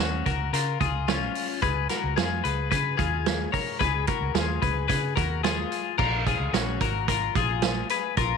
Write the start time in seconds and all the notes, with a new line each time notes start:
0.00 D#2 C#4 F#4
0.26 C#2 F#4 A#4, kick, closed hi-hat
0.53 C#3 F4 A#4, closed hi-hat
0.81 C#2 F4 G#4, kick, closed hi-hat
1.08 C#4 F4, snare, closed hi-hat
1.35 open hi-hat
1.62 C#2 G#4 B4, kick, closed hi-hat
1.89 F#4 A#4, snare, closed hi-hat
2.04 C#2
2.16 F2 F4 G#4, snare, closed hi-hat
2.44 C#2 G#4 B4, closed hi-hat
2.71 C#3 G#4 B4, kick, closed hi-hat
2.97 D#2 F4 G#4, kick, closed hi-hat
3.26 snare, closed hi-hat
3.52 A#4 C#5, kick, open hi-hat
3.79 C#2 G#4 B4, kick, closed hi-hat
4.07 F#4 A#4, kick, closed hi-hat
4.21 C#2
4.34 D#2 F4 G#4, snare, closed hi-hat
4.62 C#2 G#4 B4, kick, closed hi-hat
4.88 C#3 G#4 B4, kick, closed hi-hat
5.16 D#2 F#4 A#4, kick, closed hi-hat
5.43 F4 G#4, snare, closed hi-hat
5.72 closed hi-hat
5.98 A#1 F4 A#4, kick, crash
6.26 F4 G#4, kick, closed hi-hat
6.40 C#2
6.53 A#1 C#4 F#4, snare, closed hi-hat
6.81 G#1 F#4 A#4, kick, closed hi-hat
7.08 F4 A#4, kick, closed hi-hat
7.35 A#1 F4 G#4, kick, closed hi-hat
7.62 snare, closed hi-hat
7.89 G#4 B4, closed hi-hat
8.17 A#1 F4 A#4, kick, closed hi-hat